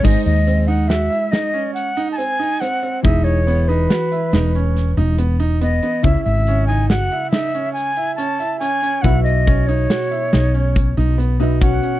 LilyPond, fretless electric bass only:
\new Staff \with { instrumentName = "Fretless electric bass" } { \clef bass \time 7/4 \key gis \phrygian \tempo 4 = 140 gis,,16 r16 dis,2 r1 r8 | e,,2 r4 e,,4. e,,2 r8 | cis,16 r16 gis,,2 r1 r8 | b,,2 r4 b,,4. b,,2 r8 | }